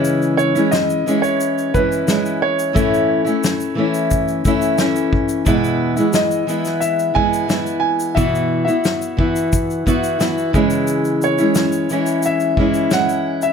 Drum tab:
SH |xxxxxxxxxxxxxx-x|xx-xxx-xxxxxxx-x|xx-xxxxxxx-xxx-x|xx-xxx-xxxxxxxxx|
SD |----o-------o---|----o-------o---|----o--o----o---|----o-------o---|
BD |----------o-----|o-------o-o---o-|o---------o-----|o-----o-o-o---o-|

SH |xxxxxxxxxx-xxx-x|
SD |----o-------o---|
BD |----------o-----|